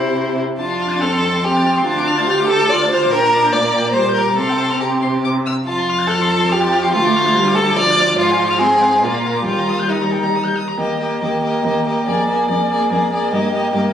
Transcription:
Already playing: cello C3, violin E4 C5, viola G4
0.59 cello F2, viola D4, violin F4 A5
0.70 violin C6
0.81 violin F6
0.90 violin A6
1.01 viola C4, violin A4 F6
1.13 violin C6
1.24 violin A5
1.34 violin C6
1.44 viola C4, violin G4 F6
1.56 violin A6
1.66 violin F6
1.76 violin C6
1.84 cello D2, viola D4, violin F4 A5
1.98 violin D6
2.07 violin F6
2.18 violin A6
2.28 viola G4, violin F6
2.40 violin D6
2.48 violin A4 A5
2.61 violin D6
2.69 viola F4, violin D5 F6
2.82 violin A6
2.90 violin C5 F6
3.03 violin D6
3.11 cello A#2, viola D4, violin A#4 G5
3.23 violin A#5
3.34 violin D6
3.44 violin G6
3.52 viola A#3, violin D5 D6
3.65 violin A#5
3.75 violin G5
3.86 violin A#5
3.92 viola G3, violin C5
3.98 violin D6
4.09 violin G6
4.14 violin A#4
4.18 violin D6
4.30 violin A#5
4.37 cello C3, viola C4, violin A4 F5
4.49 violin G5
4.60 violin C6
4.70 violin F6
4.80 violin G4 A#5
5.02 violin C6
5.25 violin D6
5.46 violin E6
5.66 cello F2, violin F4 A5
5.78 violin C6
5.89 violin F6
6.00 violin A6
6.07 viola F3, violin A4 F6
6.21 violin C6
6.30 violin A5
6.40 violin C6
6.51 violin G4 F6
6.61 violin A6
6.72 violin F6
6.83 violin C6
6.93 cello D2, viola A3, violin F4 A5
7.05 violin D6
7.16 violin F6
7.26 violin A6
7.36 viola G3, violin F6
7.48 violin D6
7.55 violin A4 A5
7.69 violin D6
7.77 viola F3, violin D5 F6
7.90 violin A6
8.00 violin F6
8.10 violin D6
8.19 cello G#2, violin F4 F5
8.31 violin G#5
8.39 violin C6
8.50 violin F6
8.59 viola C4, violin G#4 C6
8.70 violin G#5
8.82 violin F5
8.93 violin G#5
9.02 cello A#2, viola A#3, violin F4 D5
9.14 violin F5
9.26 violin A#5
9.36 violin D6
9.45 cello D#2, viola G3, violin F4 G5
9.58 violin A#5
9.69 violin D#6
9.80 violin G6
9.89 violin D#4 D#6
10.01 violin A#5
10.12 violin G5
10.23 violin A#5
10.35 violin D#6
10.45 violin G6
10.57 violin D#6
10.68 violin A#5
10.78 cello D#2, viola A#3, violin G4 D#5
10.99 viola A#3, violin G4 D#5
11.21 cello D#2, viola A#3, violin G4 D#5
11.43 viola A#3, violin G4 D#5
11.65 cello D#2, viola A#3, violin G4 D#5
11.86 viola A#3, violin G4 D#5
12.06 cello F2, viola A#3, violin G#4 D5
12.28 viola A#3, violin G#4 D5
12.49 cello F2, viola A#3, violin G#4 D5
12.70 viola A#3, violin G#4 D5
12.91 cello F2, viola A#3, violin G#4 D5
13.12 viola A#3, violin G#4 D5
13.32 cello G2, viola A#3, violin G4 D#5
13.53 viola A#3, violin G4 D#5
13.73 cello G2, viola A#3, violin G4 D#5

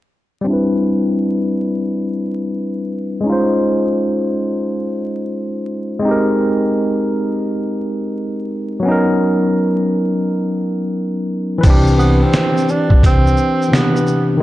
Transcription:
0.41 tine electric piano G3 C4
0.47 tine electric piano D4 E4
0.53 tine electric piano B4
3.20 tine electric piano G#3 C#4
3.26 tine electric piano D#4 F4
3.32 tine electric piano C5
5.99 tine electric piano G#3 C4
6.05 tine electric piano D#4 G4
6.11 tine electric piano A#4
8.80 tine electric piano F#3 B3
8.85 tine electric piano C#4 D#4
8.91 tine electric piano A#4
11.58 tine electric piano E3 B4
11.63 upright bass C2, tine electric piano C4 D4, kick, closed hi-hat, crash, shaker
11.70 tine electric piano G4
11.87 shaker
11.99 tenor saxophone B3, shaker
12.23 tenor saxophone C4
12.34 snare, closed hi-hat, shaker
12.57 shaker
12.69 tenor saxophone D4, shaker
12.90 upright bass B1, kick
13.03 upright bass C2, tenor saxophone C4, kick, closed hi-hat, shaker
13.27 shaker
13.37 shaker
13.62 shaker
13.68 tine electric piano C3 E3 B3
13.72 tenor saxophone B3, tine electric piano D4 G4, snare, closed hi-hat, shaker
13.96 shaker
14.07 shaker
14.37 tine electric piano D#3

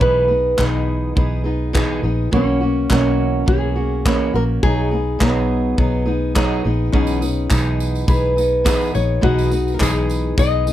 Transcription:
0.00 fingered electric bass B1, steel-string acoustic guitar B2 E3 B3 D#4 G#4, nylon-string guitar B4, kick
0.28 steel-string acoustic guitar B3 D#4 G#4
0.57 fingered electric bass B1, steel-string acoustic guitar B2 E3 B3 D#4 G#4, nylon-string guitar D#4, kick, clap
1.15 fingered electric bass B1, steel-string acoustic guitar E3 B3 D#4 G#4, kick
1.44 steel-string acoustic guitar B3 D#4 G#4
1.73 steel-string acoustic guitar B2 E3 B3 D#4 G#4, kick, clap
2.03 fingered electric bass A#1, steel-string acoustic guitar B3 D#4 G#4
2.31 fingered electric bass B1, steel-string acoustic guitar B2 E3 A#3 C#4 F#4, kick
2.36 nylon-string guitar C#4
2.61 steel-string acoustic guitar A#3 C#4 F#4
2.90 fingered electric bass B1, steel-string acoustic guitar B2 E3 A#3 C#4 F#4, nylon-string guitar C#4, kick, clap
3.46 fingered electric bass B1, steel-string acoustic guitar E3 A#3 C#4 F#4, nylon-string guitar G#4, kick
3.76 steel-string acoustic guitar A#3 C#4 F#4
4.05 steel-string acoustic guitar B2 E3 A#3 C#4 F#4, kick, clap
4.33 fingered electric bass A#1, steel-string acoustic guitar A#3 C#4 F#4, nylon-string guitar A#4
4.63 fingered electric bass B1, steel-string acoustic guitar B2 F#3 B3 D#4 G#4, nylon-string guitar G#4, kick
4.91 steel-string acoustic guitar B3 D#4 G#4
5.19 fingered electric bass B1, steel-string acoustic guitar B2 F#3 B3 D#4 G#4, nylon-string guitar B3, kick, clap
5.77 fingered electric bass B1, steel-string acoustic guitar F#3 B3 D#4 G#4, kick
6.06 steel-string acoustic guitar B3 D#4 G#4
6.35 steel-string acoustic guitar B2 F#3 B3 D#4 G#4, kick, clap
6.64 fingered electric bass A#1, steel-string acoustic guitar B3 D#4 G#4
6.92 fingered electric bass B1, steel-string acoustic guitar B2 E3 B3 D#4 G#4, nylon-string guitar C#4, kick
7.07 tambourine
7.21 steel-string acoustic guitar B3 D#4 G#4, tambourine
7.50 fingered electric bass B1, steel-string acoustic guitar B2 E3 B3 D#4 G#4, nylon-string guitar D#4, kick, clap, tambourine
7.80 tambourine
7.95 tambourine
8.07 fingered electric bass B1, steel-string acoustic guitar E3 B3 D#4 G#4, nylon-string guitar B4, kick, tambourine
8.36 steel-string acoustic guitar B3 D#4 G#4, tambourine
8.64 steel-string acoustic guitar B2 E3 B3 D#4 G#4, kick, clap, tambourine
8.81 tambourine
8.94 fingered electric bass A#1, steel-string acoustic guitar B3 D#4 G#4, nylon-string guitar C#5, tambourine
9.21 fingered electric bass B1, steel-string acoustic guitar B2 E3 B3 D#4 G#4, nylon-string guitar F#4, kick
9.39 tambourine
9.50 steel-string acoustic guitar D#4 G#4, tambourine
9.53 steel-string acoustic guitar B3, tambourine
9.68 tambourine
9.74 nylon-string guitar A#4
9.79 fingered electric bass B1, steel-string acoustic guitar B2 E3 B3 D#4 G#4, nylon-string guitar G#4, kick, clap, tambourine
10.09 tambourine
10.37 fingered electric bass B1, steel-string acoustic guitar E3 B3 D#4 G#4, nylon-string guitar D#5, kick, tambourine
10.67 steel-string acoustic guitar B3 D#4 G#4, tambourine

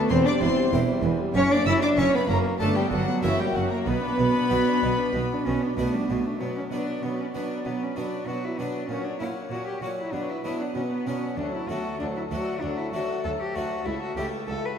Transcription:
Already playing: cello A3, viola section B3, violin section A4
0.10 double bass section E1, cello section E2, harpsichord E2, viola section E3, cello C4, violin section C5 C6
0.26 viola section G3, cello D4, violin section D5 D6
0.41 double bass section E1, cello section E2, harpsichord E2, viola section E3, cello C4, violin section C5 C6
0.59 viola section G3
0.72 double bass section E1, cello section E2, harpsichord E2 E4 G4, viola section E3
0.90 viola section G3
1.03 double bass section E1, cello section E2, harpsichord E2, viola section E3
1.21 viola section G3
1.34 double bass section F#1, cello section F#2, harpsichord F#2, cello C#4, viola section C#4, violin section C#5 C#6
1.51 viola section A#3, cello D4, violin section D5 D6
1.66 double bass section F#1, cello section F#2, harpsichord F#2, viola section C#4, cello E4, violin section E5 E6
1.82 viola section A#3, cello D4, violin section D5 D6
1.97 double bass section F#1, cello section F#2, harpsichord F#2 C#4 E4, cello C#4, viola section C#4, violin section C#5 C#6
2.14 viola section A#3, cello B3, violin section B4 B5
2.28 double bass section F#1, cello section F#2, harpsichord F#2, cello A#3, viola section C#4, violin section A#4 A#5
2.45 viola section A#3
2.60 double bass section G1, cello section G2, harpsichord G2 B3 D4, cello A3, viola section D4, violin section A4 A5
2.76 cello G3, viola section B3, violin section G4 G5
2.90 double bass section G1, cello section G2, harpsichord G2, cello F#3, viola section D4, violin section F#4 F#5
3.08 viola section B3
3.23 double bass section F#1, harpsichord F#2 A#3 C#4 F#4, cello section F#2, cello E3, viola section C#4, violin section E4 E5
3.38 cello G3, viola section A#3, violin section G4 G5
3.54 double bass section F#1, cello section F#2, harpsichord F#2, cello F#3, viola section C#4, violin section F#4 F#5
3.70 cello A#3, viola section A#3, violin section A#4 A#5
3.86 double bass section B1, cello section B2, harpsichord B2, cello B3, viola section B3, violin section B4 B5
4.03 viola section D4
4.18 double bass section B1, harpsichord B2, cello section B2, viola section B3
4.34 viola section D4
4.50 double bass section B1, cello section B2, harpsichord B2 B3 D4 F#4, viola section B3
4.66 viola section D4
4.82 double bass section B1, harpsichord B2, cello section B2, viola section B3
4.98 viola section D4
5.14 double bass section B1, cello section B2, harpsichord B2, viola section B3
5.30 viola section D4
5.45 double bass section B1, cello section B2, harpsichord B2, viola section B3, cello C#4
5.61 cello B3, viola section D4
5.77 double bass section B1, cello section B2, harpsichord B2 B3 D4 F#4, cello A3, viola section B3
5.92 cello G3, viola section D4
6.08 double bass section B1, cello section B2, harpsichord B2, cello A3, viola section B3
6.25 viola section D4
6.40 cello section B2, harpsichord B2, viola section F#3, cello B3, violin section B4 D5
6.57 cello C#4
6.71 harpsichord B2 B3 D4, cello section B2, viola section F#3, cello D4, violin section B4 D5
7.03 cello section B2, harpsichord B2, viola section F#3, cello B3, violin section B4 D5
7.20 cello C#4
7.33 cello section B2, harpsichord B2 B3 D4, viola section F#3, cello D4, violin section B4 D5
7.65 harpsichord B2, cello section B2, viola section F#3, cello B3, violin section B4 D5
7.83 cello C#4
7.96 cello section B2, harpsichord B2 B3 D4, viola section F#3, cello D4, violin section B4 D5
8.27 cello section B2, harpsichord B2, viola section F#3, cello F#4, violin section B4 D5
8.45 cello E4
8.58 cello section B2, harpsichord B2 B3 D4, viola section F#3, cello D4, violin section B4 D5
8.89 cello section A#2, harpsichord A#2, viola section F#3, cello C#4, violin section C#5 F#5
9.04 cello D4
9.19 cello section A#2, harpsichord A#2 C#4, viola section F#3, cello E4, violin section C#5 F#5
9.50 cello section A#2, harpsichord A#2, viola section F#3, cello F#4, violin section C#5 F#5
9.67 cello G4
9.82 cello section A#2, harpsichord A#2 C#4, viola section F#3, cello F#4, violin section C#5 F#5
10.00 cello E4
10.13 cello section B2, harpsichord B2, viola section F#3, cello D4, violin section B4 F#5
10.30 cello E4
10.44 harpsichord B2 B3 D4, cello section B2, viola section F#3, cello E4, violin section B4 F#5
10.61 cello D4
10.75 cello section B2, harpsichord B2, viola section F#3, cello C#4, violin section B4 F#5
10.92 cello B3
11.07 harpsichord B2 B3 D4, cello section B2, viola section F#3, cello C#4, violin section B4 F#5
11.37 cello section D2, harpsichord D2, viola section F#3, cello D4, violin section A4 F#5
11.54 cello E4
11.68 cello section D2, harpsichord D2 A3 D4, viola section F#3, cello F#4, violin section A4 F#5
11.99 cello section D2, harpsichord D2, viola section F#3, cello D4, violin section A4 F#5
12.17 cello E4
12.31 harpsichord D2 A3 D4, cello section D2, viola section F#3, cello F#4, violin section A4 F#5
12.60 harpsichord D2, cello section D2, viola section F#3, cello D4, violin section A4 F#5
12.77 cello E4
12.93 cello section D2, harpsichord D2 A3 D4, viola section F#3, cello F#4, violin section A4 F#5
13.24 harpsichord D2, cello section D2, viola section F#3, cello A4, violin section A4 F#5
13.41 cello G4
13.55 cello section D2, harpsichord D2 A3 D4, viola section F#3, cello F#4, violin section A4 F#5
13.86 cello section C#2, harpsichord C#2, viola section A3, cello E4, violin section A4 E5
14.02 cello F#4
14.16 cello section C#2, harpsichord C#2 A3 E4, viola section A3, cello G4, violin section A4 E5
14.47 cello section C#2, harpsichord C#2, viola section A3, cello A4, violin section A4 E5
14.65 cello B4

